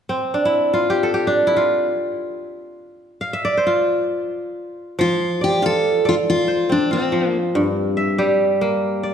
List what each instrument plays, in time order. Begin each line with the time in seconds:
0.09 kora C4
0.34 kora D4
0.45 kora E4
0.74 kora F4
0.90 kora G4
1.03 kora A4
1.14 kora G4
1.27 kora D4
1.47 kora E4
1.56 kora F4
3.21 kora F5
3.33 kora E5
3.45 kora D5
3.57 kora C5
3.67 kora F4
4.99 kora F3, steel-string acoustic guitar F4
5.41 steel-string acoustic guitar G4, kora D5
5.62 kora F4, steel-string acoustic guitar A4
6.05 steel-string acoustic guitar F4, kora A4 D5
6.30 steel-string acoustic guitar F4
6.48 kora C5
6.69 kora C4, steel-string acoustic guitar D4
6.91 steel-string acoustic guitar C4, kora F4
7.12 kora F3
7.55 kora G2
7.97 kora E5
8.18 kora G3 G4
8.61 kora A#3
9.03 kora D5